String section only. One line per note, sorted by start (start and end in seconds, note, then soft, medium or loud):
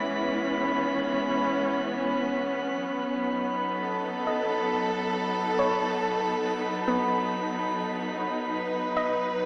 0.00 2.82 E3 medium
0.00 2.80 G#3 medium
0.00 9.46 B3 medium
0.00 5.28 C#4 medium
2.76 9.46 F#3 medium
3.20 9.46 D#4 medium
3.73 8.77 A4 medium
8.52 9.46 B4 medium